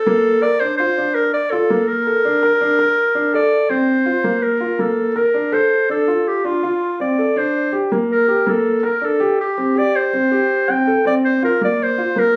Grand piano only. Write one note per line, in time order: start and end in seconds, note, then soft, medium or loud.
0.06 0.38 A#3 medium
0.42 0.58 A#4 medium
0.61 0.77 D4 medium
0.80 0.95 F4 medium
0.98 1.29 D4 medium
1.52 1.68 F4 medium
1.70 2.02 A#3 medium
2.07 2.22 A4 medium
2.25 2.41 D4 medium
2.43 2.59 A#4 medium
2.61 2.77 D4 medium
2.79 3.11 A#4 medium
3.15 3.31 D4 medium
3.34 3.65 A4 medium
3.69 4.01 C4 medium
4.06 4.22 F4 medium
4.24 4.56 A#3 medium
4.60 4.77 F4 medium
4.79 5.11 A#3 medium
5.16 5.32 A#4 medium
5.34 5.50 D4 medium
5.52 5.84 A4 medium
5.89 6.06 D4 medium
6.08 6.40 F4 medium
6.44 6.61 D4 medium
6.63 6.95 F4 medium
7.00 7.16 C4 medium
7.18 7.34 A4 medium
7.36 7.68 D4 medium
7.73 7.89 G4 medium
7.92 8.24 A#3 medium
8.28 8.44 G4 medium
8.47 8.79 A#3 medium
8.83 9.00 A#4 medium
9.01 9.18 D4 medium
9.20 9.52 G4 medium
9.58 9.74 C4 medium
9.75 10.08 G4 medium
10.13 10.29 C4 medium
10.31 10.63 G4 medium
10.69 10.84 C4 medium
10.87 11.03 A4 medium
11.05 11.37 C4 medium
11.43 11.58 F4 medium
11.61 11.93 A#3 medium
11.98 12.14 F4 medium
12.16 12.36 A#3 medium